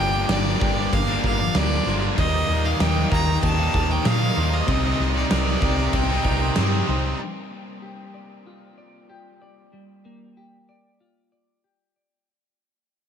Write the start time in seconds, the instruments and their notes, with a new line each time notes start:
Already playing: overdriven electric guitar G2 D3, distorted electric guitar D3 G3 A#3 D4, clean electric guitar G3 A#3, violin G5
0.00 fingered electric bass G1, overdriven electric guitar G3 A#3 D4, clean electric guitar F4
0.14 distorted electric guitar G3 A#3 D4
0.29 fingered electric bass G1, overdriven electric guitar G2 D3 G3 A#3 D4, clean electric guitar A#4 D5, violin D5, snare, crash
0.46 snare
0.60 fingered electric bass G1, overdriven electric guitar D3 G3 A#3 D4, clean electric guitar G4, kick
0.76 overdriven electric guitar G3 A#3 D4, muted distorted electric guitar stroke
0.93 fingered electric bass G1, clean electric guitar A#3, violin F5, kick, crash
1.07 overdriven electric guitar G3 A#3 D4
1.23 fingered electric bass G1, overdriven electric guitar D3 G3 A#3 D4, clean electric guitar F4 A#4, violin F5, kick
1.39 overdriven electric guitar G3 A#3 D4, muted distorted electric guitar stroke
1.54 fingered electric bass D2, overdriven electric guitar G2 D3 G3 A#3 D4, clean electric guitar A#3, violin D5, snare, crash
1.86 fingered electric bass G1, overdriven electric guitar D3 G3 A#3 D4, clean electric guitar F4 C5, snare
2.02 overdriven electric guitar G3 A#3 D4
2.17 fingered electric bass D#2, overdriven electric guitar D#3 G3 A#3 D#4, clean electric guitar D#3, violin D#5, kick, crash
2.33 overdriven electric guitar G3 A#3 D#4
2.48 fingered electric bass D#2, overdriven electric guitar D#3 G3 A#3 D#4, clean electric guitar D#4
2.65 distorted electric guitar G3 A#3 D#4, violin F5
2.79 fingered electric bass D#2, overdriven electric guitar D#3 G3 A#3 D#4, clean electric guitar A#4 D#5, violin G5, snare, crash
3.10 fingered electric bass D#2, overdriven electric guitar D#3 G3 A#3 D#4, clean electric guitar G4, violin A#5, kick
3.26 overdriven electric guitar G3 A#3 D#4, muted distorted electric guitar stroke
3.43 fingered electric bass D#2, clean electric guitar A#3, violin A5, kick, crash
3.57 overdriven electric guitar A#3 D#4
3.61 overdriven electric guitar G3
3.72 fingered electric bass D#2, overdriven electric guitar D#3 G3 A#3 D#4, clean electric guitar D#4 A#4, kick
3.89 overdriven electric guitar G3 A#3 D#4, violin G5, muted distorted electric guitar stroke
4.04 fingered electric bass A#2, overdriven electric guitar D#3 G3 A#3 D#4, clean electric guitar A#3, violin F5, snare, crash
4.35 fingered electric bass D#2, overdriven electric guitar D#3 G3 A#3 D#4, clean electric guitar D#4 C5
4.50 overdriven electric guitar G3 A#3 D#4, violin D#5
4.67 fingered electric bass C2, overdriven electric guitar C3 G3 C4 D#4, clean electric guitar C3, kick, crash
4.82 overdriven electric guitar G3 C4 D#4
4.98 fingered electric bass C2, overdriven electric guitar C3 G3 C4 D#4, clean electric guitar D#4
5.15 distorted electric guitar G3 C4 D#4, violin D5
5.30 fingered electric bass C2, overdriven electric guitar C3 G3 C4 D#4, clean electric guitar A#4 D5, violin D5, snare, crash
5.47 snare
5.61 fingered electric bass C2, overdriven electric guitar C3 G3 C4 D#4, clean electric guitar G4, kick
5.77 overdriven electric guitar G3 C4 D#4, muted distorted electric guitar stroke
5.93 fingered electric bass C2, clean electric guitar C4, violin G5, kick, crash
6.09 overdriven electric guitar G3 C4 D#4
6.24 fingered electric bass C2, overdriven electric guitar C3 G3 C4, clean electric guitar D#4 A#4, kick
6.29 overdriven electric guitar D#4
6.41 overdriven electric guitar G3 C4 D#4, muted distorted electric guitar stroke
6.56 fingered electric bass G2, overdriven electric guitar C3 G3 C4, clean electric guitar C4, snare, crash
6.60 overdriven electric guitar D#4
6.87 fingered electric bass C2, overdriven electric guitar C3 G3 C4, clean electric guitar D#4 C5
6.92 overdriven electric guitar D#4
7.04 overdriven electric guitar G3 C4 D#4
7.19 clean electric guitar G3
7.50 clean electric guitar A#3
7.82 clean electric guitar G4
8.14 clean electric guitar D5
8.46 clean electric guitar F4
8.78 clean electric guitar D5
9.10 clean electric guitar G4
9.42 clean electric guitar D5
9.73 clean electric guitar G3
10.05 clean electric guitar A#3
10.37 clean electric guitar G4
10.69 clean electric guitar D5
11.00 clean electric guitar F4
11.32 clean electric guitar D5
11.64 clean electric guitar G4
11.96 clean electric guitar D5